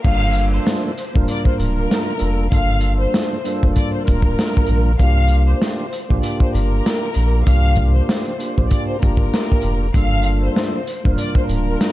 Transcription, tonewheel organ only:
0.04 G2 A#3 D4 F4 A4
1.14 G2 A#3 D4 F4 A#4
2.16 G2 A#3 D4 F4 A4
2.50 G2 A#3 D4 F4 A4
3.44 G2 A#3 D4 F4 A4
4.03 G2 A#3 D4 F4 A#4
4.99 A#3 D4 F4 G4
6.09 A#3 D4 F4 G4
7.13 A#3 D4 F4 G4
7.45 A#3 D4 F4 G4
8.38 A#3 D4 F4 G4
8.99 A#3 D4 F4 G4
9.94 G2 A#3 D4 F4 A4
11.03 G2 A#3 D4 F4 A#4

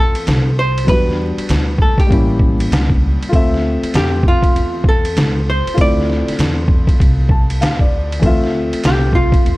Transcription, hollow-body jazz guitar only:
Already playing: A4
0.59 C5
0.89 B4
1.82 A4
1.99 G4
3.97 G4
4.28 F4
4.89 A4
5.50 C5
5.81 D5
8.86 G4
9.15 F4

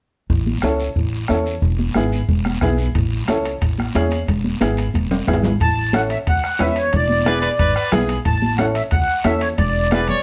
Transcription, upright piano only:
0.63 C#4 E4 A4
1.29 C#4 E4 A4
1.96 B3 E4 G#4
2.62 B3 E4 G#4
3.28 C#4 E4 A4
3.95 C#4 E4 G#4
4.61 B3 E4 G#4
5.27 B3 E4 G#4
5.93 C#4 E4 A4
6.60 C#4 E4 B4
7.26 B3 E4 G#4
7.92 B3 E4 G#4
8.59 C#4 E4 A4
9.24 C#4 E4 A4
9.91 B3 E4 G#4

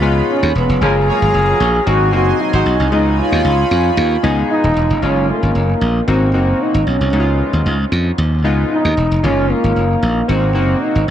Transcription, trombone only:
0.30 C#4
0.57 B3
0.83 G#4
1.89 F#4
2.15 F#4
2.41 D#4
2.94 D#4
3.20 F4
4.51 D#4
5.05 C#4
5.31 A#3
6.10 C4
6.62 D#4
6.88 C#4
8.73 D#4
9.25 C#4
9.52 A#3
10.30 C4
10.83 D#4

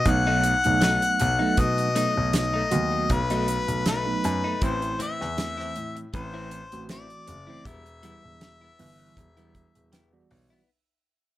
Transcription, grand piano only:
0.06 B1
0.66 B1
1.21 B1
1.58 B2
2.17 B1
2.72 D#2
3.10 B1
3.68 B1
4.25 F#2
4.62 A1
5.01 A1
5.21 E2
5.77 A2
6.14 A1
6.73 A1
7.28 F#1
7.66 E1
8.24 E1
8.80 G1
9.17 E1
9.76 E1
10.31 B1

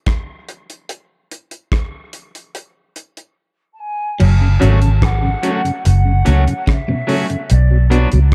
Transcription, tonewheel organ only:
4.41 F#2 C#3
4.60 A3 C#4 F#4
4.82 F#2 C#3
5.22 F#2 C#3
5.42 A3 C#4 F#4
5.64 F#2 C#3
6.05 F#2 C#3
6.25 A3 C#4 F#4
6.46 F#2 C#3
6.88 F#2 C#3
7.08 A3 C#4 F#4
7.30 F#2 C#3
7.71 B2 F#3
7.91 B3 D4 F#4
8.13 B2 F#3

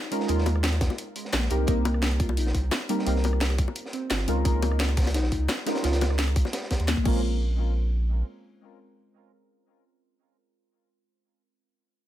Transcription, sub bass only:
0.29 D#2
1.33 A#1
1.50 C2
1.68 C2
2.37 A#1
2.55 C2
3.06 C2
4.11 G1
4.28 C#2
4.45 C#2
5.15 A#1
5.32 C#2
5.84 C#2
6.80 D#2
7.06 A#1

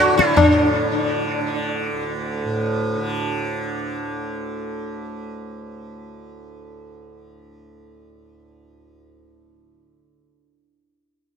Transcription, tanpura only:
Already playing: D2 A2 D3
0.15 D3
0.39 A2
0.92 D3
1.41 D3
1.94 D2
2.44 A2
2.97 D3

